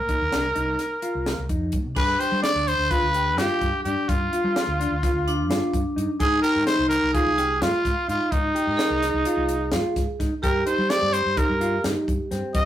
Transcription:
0.00 0.16 A#2 medium
0.00 1.45 A#4 medium
0.09 0.23 D#4 medium
0.09 kick medium
0.09 closed hi-hat medium
0.21 0.30 D#2 medium
0.32 0.51 C2 medium
0.32 0.46 D4 medium
0.32 snare medium
0.32 closed hi-hat medium
0.55 0.74 C2 medium
0.55 0.83 D#4 medium
0.55 closed hi-hat soft
0.79 snare soft
0.79 closed hi-hat medium
1.02 1.30 F4 medium
1.02 closed hi-hat medium
1.15 1.33 C2 medium
1.26 snare medium
1.26 closed hi-hat medium
1.38 1.47 C2 medium
1.49 1.85 F2 medium
1.49 1.77 D#4 medium
1.49 kick medium
1.49 closed hi-hat medium
1.72 kick medium
1.72 closed hi-hat medium
1.85 1.94 C3 medium
1.95 2.15 G2 medium
1.95 5.21 D4 medium
1.95 2.10 G#4 medium
1.95 2.21 B4 medium
1.95 kick loud
1.95 crash medium
2.20 2.34 G4 medium
2.20 2.42 C5 medium
2.20 closed hi-hat medium
2.32 2.41 G3 medium
2.43 2.71 D4 medium
2.43 2.69 D5 loud
2.43 snare loud
2.43 closed hi-hat medium
2.55 2.73 D2 medium
2.68 2.92 C5 medium
2.68 closed hi-hat medium
2.78 2.88 D2 medium
2.91 3.05 F4 medium
2.91 3.40 B4 medium
2.91 kick medium
2.91 closed hi-hat medium
3.02 3.38 D2 medium
3.14 3.29 G4 medium
3.14 closed hi-hat medium
3.38 3.47 G2 medium
3.38 3.66 F4 medium
3.38 3.83 G4 medium
3.38 snare loud
3.38 closed hi-hat medium
3.61 3.71 G2 medium
3.61 kick medium
3.61 closed hi-hat soft
3.84 3.94 G2 medium
3.84 4.13 D4 medium
3.84 4.10 G4 medium
3.84 closed hi-hat soft
4.09 4.27 G2 medium
4.09 5.50 F4 medium
4.09 kick loud
4.09 closed hi-hat medium
4.33 4.60 F4 medium
4.33 closed hi-hat medium
4.44 4.53 G3 medium
4.56 snare loud
4.56 closed hi-hat medium
4.67 4.86 D2 medium
4.80 4.93 D4 medium
4.80 closed hi-hat medium
4.91 5.00 D2 medium
5.03 5.31 F4 medium
5.03 kick loud
5.03 snare soft
5.03 closed hi-hat medium
5.14 5.50 D2 medium
5.27 6.17 D4 medium
5.27 closed hi-hat medium
5.50 5.59 G2 medium
5.50 5.77 F4 medium
5.50 snare loud
5.50 closed hi-hat medium
5.73 5.82 G2 medium
5.73 kick medium
5.73 closed hi-hat medium
5.96 6.06 G2 medium
5.96 6.10 D#4 medium
5.96 closed hi-hat medium
6.20 6.38 G#2 medium
6.20 7.34 D#4 medium
6.20 6.34 G#4 medium
6.20 6.41 G#4 medium
6.20 kick loud
6.20 closed hi-hat medium
6.42 6.57 G4 medium
6.42 6.65 A#4 medium
6.42 closed hi-hat medium
6.56 6.65 G#2 medium
6.66 6.95 D#4 medium
6.66 6.88 C5 medium
6.66 snare loud
6.66 closed hi-hat medium
6.79 6.97 C2 medium
6.89 7.11 A#4 medium
6.89 closed hi-hat medium
7.03 7.12 C2 medium
7.14 7.28 F4 medium
7.14 7.64 G#4 medium
7.14 kick loud
7.14 closed hi-hat medium
7.26 7.63 C2 medium
7.38 8.76 F4 medium
7.38 7.52 G4 medium
7.38 snare soft
7.38 closed hi-hat medium
7.61 7.71 G#2 medium
7.61 7.89 F4 medium
7.61 8.09 F4 medium
7.61 snare loud
7.61 closed hi-hat medium
7.85 7.94 G#2 medium
7.85 kick medium
7.85 snare soft
7.85 closed hi-hat medium
8.08 8.17 G#2 medium
8.08 8.36 D#4 medium
8.08 8.33 F4 medium
8.08 closed hi-hat medium
8.31 8.50 G#2 medium
8.31 9.73 D#4 medium
8.31 kick loud
8.31 closed hi-hat medium
8.55 8.83 G4 medium
8.55 closed hi-hat medium
8.67 8.76 G#2 medium
8.67 8.78 A#4 medium
8.77 10.15 G#4 medium
8.77 snare loud
8.77 closed hi-hat medium
8.90 9.09 C2 medium
9.03 9.16 D#4 medium
9.03 snare soft
9.03 closed hi-hat medium
9.14 9.23 C2 medium
9.25 9.54 F4 medium
9.25 closed hi-hat medium
9.37 9.74 C2 medium
9.49 closed hi-hat medium
9.72 9.82 G#2 medium
9.72 10.00 F4 medium
9.72 snare loud
9.72 closed hi-hat medium
9.96 10.06 G#2 medium
9.96 kick medium
9.96 snare soft
9.96 closed hi-hat medium
10.20 10.29 G#2 medium
10.20 10.33 D#4 medium
10.20 kick medium
10.20 snare soft
10.20 closed hi-hat medium
10.43 10.62 G2 medium
10.43 12.65 G4 loud
10.43 10.57 G4 medium
10.43 10.65 A#4 medium
10.43 kick loud
10.43 closed hi-hat medium
10.66 10.80 D#4 medium
10.66 10.91 C5 medium
10.66 closed hi-hat medium
10.78 10.88 G3 medium
10.90 11.18 C4 medium
10.90 11.15 D5 loud
10.90 snare loud
10.90 closed hi-hat medium
11.02 11.20 G2 medium
11.13 11.39 C5 medium
11.13 closed hi-hat medium
11.26 11.35 G2 medium
11.37 11.51 D#4 medium
11.37 11.85 A#4 medium
11.37 kick loud
11.37 closed hi-hat medium
11.49 11.77 G2 medium
11.61 11.75 F4 medium
11.61 closed hi-hat medium
11.84 11.94 G2 medium
11.84 12.12 D#4 medium
11.84 snare loud
11.84 closed hi-hat medium
12.08 12.17 G2 medium
12.08 kick medium
12.08 closed hi-hat soft
12.31 12.41 G2 medium
12.31 12.59 C4 medium
12.31 snare soft
12.31 closed hi-hat medium
12.54 12.65 G2 medium
12.54 12.65 D#5 medium
12.54 kick loud
12.54 closed hi-hat medium

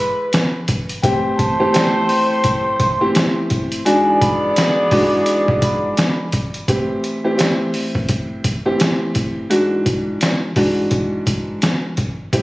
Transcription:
0.00 0.64 G#3 medium
0.00 0.64 E4 medium
0.00 0.64 B4 loud
0.00 0.16 B5 medium
0.33 snare loud
0.33 closed hi-hat medium
0.68 kick loud
0.68 closed hi-hat medium
0.89 closed hi-hat medium
1.03 1.55 A2 medium
1.03 1.55 E3 medium
1.03 3.47 A3 loud
1.03 1.55 C4 medium
1.03 3.47 G4 medium
1.03 1.55 G4 loud
1.03 3.47 C5 loud
1.03 1.35 G5 loud
1.03 kick loud
1.03 closed hi-hat medium
1.36 2.04 A5 medium
1.36 kick loud
1.36 closed hi-hat medium
1.59 1.72 A2 loud
1.59 1.72 E3 medium
1.59 1.72 C4 medium
1.59 1.72 G4 loud
1.73 2.89 A2 loud
1.73 2.89 E3 medium
1.73 2.89 C4 medium
1.73 2.89 G4 loud
1.73 snare loud
1.73 closed hi-hat loud
2.08 2.41 C6 medium
2.08 open hi-hat soft
2.44 kick loud
2.44 closed hi-hat medium
2.80 3.00 C6 medium
2.80 kick loud
2.80 closed hi-hat medium
3.01 3.80 A2 medium
3.01 3.80 E3 medium
3.01 3.80 C4 medium
3.01 3.80 G4 loud
3.15 snare loud
3.15 closed hi-hat medium
3.50 kick loud
3.50 closed hi-hat medium
3.72 closed hi-hat medium
3.85 4.85 G#2 medium
3.85 4.85 E3 medium
3.85 6.29 B3 loud
3.85 4.85 D4 medium
3.85 4.85 F#4 loud
3.85 6.29 G#4 medium
3.85 6.29 D5 medium
3.85 4.17 G#5 loud
3.85 closed hi-hat medium
4.21 4.88 B5 medium
4.21 kick loud
4.21 closed hi-hat medium
4.56 snare loud
4.56 closed hi-hat loud
4.91 6.24 G#2 medium
4.91 6.24 E3 medium
4.91 6.24 D4 medium
4.91 6.24 F#4 loud
4.91 5.23 D6 medium
4.91 kick medium
4.91 open hi-hat soft
5.26 closed hi-hat medium
5.48 kick loud
5.62 5.82 B5 medium
5.62 kick loud
5.62 closed hi-hat medium
5.97 snare loud
5.97 closed hi-hat medium
6.32 kick loud
6.32 closed hi-hat medium
6.54 closed hi-hat medium
6.68 7.20 A2 medium
6.68 7.20 E3 medium
6.68 7.20 C4 medium
6.68 7.20 G4 loud
6.68 kick loud
6.68 closed hi-hat medium
7.04 closed hi-hat medium
7.24 7.36 A2 medium
7.24 7.36 E3 medium
7.24 7.36 C4 medium
7.24 7.36 G4 loud
7.37 8.53 A2 medium
7.37 8.53 E3 medium
7.37 8.53 C4 medium
7.37 8.53 G4 loud
7.37 snare loud
7.37 closed hi-hat loud
7.74 open hi-hat soft
7.95 kick medium
8.09 kick medium
8.09 closed hi-hat medium
8.44 kick medium
8.44 closed hi-hat medium
8.65 9.45 A2 medium
8.65 9.45 E3 medium
8.65 9.45 C4 medium
8.65 9.45 G4 loud
8.80 snare loud
8.80 closed hi-hat medium
9.15 kick medium
9.15 closed hi-hat medium
9.50 10.49 G#2 medium
9.50 10.49 E3 medium
9.50 10.49 D4 medium
9.50 10.49 F#4 loud
9.50 closed hi-hat medium
9.86 kick medium
9.86 closed hi-hat medium
10.21 snare loud
10.21 closed hi-hat loud
10.56 11.88 G#2 loud
10.56 11.89 E3 medium
10.56 11.89 D4 medium
10.56 11.89 F#4 loud
10.56 kick medium
10.56 open hi-hat soft
10.91 kick medium
10.91 closed hi-hat medium
11.27 kick medium
11.27 closed hi-hat medium
11.62 snare loud
11.62 closed hi-hat medium
11.97 kick medium
11.97 closed hi-hat medium
12.33 12.42 A2 medium
12.33 12.42 E3 medium
12.33 12.42 C4 medium
12.33 12.42 G4 loud
12.33 kick loud
12.33 closed hi-hat medium

